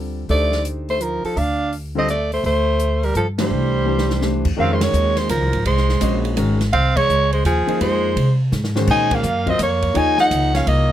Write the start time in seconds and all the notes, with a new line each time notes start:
Already playing: D2 D3 G3 C4 F4 A4
0.29 D2 A3 D4 D#4 G4 A4 C5 D5, open hi-hat
0.52 snare
0.65 closed hi-hat
0.89 A3 C5, open hi-hat
1.00 F3 A#4, closed hi-hat
1.24 F3 A4, muted upright bass stroke, open hi-hat
1.36 D2 D4 F5, open hi-hat
1.73 open hi-hat
1.95 D3 G3 C4 F4 A4 D#5
2.08 A3 D5, closed hi-hat
2.32 A3 C5, open hi-hat
2.44 D2 A3 C5, open hi-hat
2.80 closed hi-hat
3.03 G3 A#4, open hi-hat
3.15 G2 F3 A4, closed hi-hat
3.38 E3 G3 A3 D4 G4 C5, snare, ride
3.51 C2
3.85 E3 A3 D4 G4 C5
3.98 snare
4.10 snare
4.21 E3 A3 D4 G4 C5, snare
4.45 E2, kick, crash
4.57 F2 D#3 G#3 C4 C#4 F#4 A#4 F5
4.73 G#3 C5
4.81 G#3 C#5, snare, ride
4.93 D#2, hi-hat pedal
5.16 G#3 C5, snare, ride
5.29 C#2 F3 A#4, hi-hat pedal, ride
5.41 C2
5.53 G#1, ride
5.65 C2 G#3 C5, ride
5.77 snare
5.89 snare
6.00 A#1 G#3 C#4 F#4 C5 D#5, hi-hat pedal, ride
6.25 ride
6.36 G#1 D#3 G#3 C#4 F#4 A#4, hi-hat pedal, ride
6.61 snare, ride
6.73 C2 C4 F5, ride
6.96 G#3 C#5, kick, ride
7.09 C#2, hi-hat pedal
7.33 G#3 C5, ride
7.44 D#2 F3 G#4, hi-hat pedal, ride
7.67 F3 A#3 D#4 G#4 C5, muted upright bass stroke, ride
7.81 F2 G#3 C5, ride
8.16 C3, ride
8.52 G#2, snare, hi-hat pedal
8.64 snare
8.75 D#3 G#3 C#4 F#4 C5, snare
8.87 A#2 D#4 G#5, kick, crash
9.11 A#3 F5, kick, ride
9.23 F#2, hi-hat pedal
9.46 F#3 C4 F4 A#4 D#5, kick, ride
9.59 F2 A#3 C#5, hi-hat pedal, ride
9.82 kick, ride
9.94 D#2 F3 A#3 D#4 G#4 C#5 G#5, ride
10.18 D#4 F#5, snare
10.31 C#2, hi-hat pedal, ride
10.54 C#4 F5, snare, ride
10.67 C2 A#3 D#5, ride